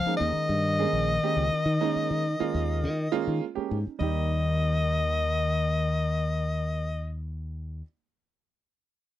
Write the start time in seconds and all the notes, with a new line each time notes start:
Already playing: F3 F5
0.06 G#3 A#3 C#4 D#4, muted fingered electric bass stroke
0.17 D#2 D#3 D#5
0.36 muted fingered electric bass stroke
0.49 G2
0.79 G#3 A#3 C#4 G#4
0.93 A#1
1.23 G#3 A#3 C#4 G4
1.37 C#2
1.52 C#4 F4
1.66 D#3
1.81 G#3 A#3 C#4 D#4
1.96 muted fingered electric bass stroke
2.11 D#3
2.40 G#3 A#3 C#4 F4, muted fingered electric bass stroke
2.55 D#2
2.83 D#3
3.12 G#3 A#3 C#4 F4
3.27 D#3
3.55 G#3 A#3 C#4 G4, muted fingered electric bass stroke
3.71 G#2
3.85 C#4 D#4, muted fingered electric bass stroke
3.99 D#2 D#3 G3 A#3 D#4 G4 D#5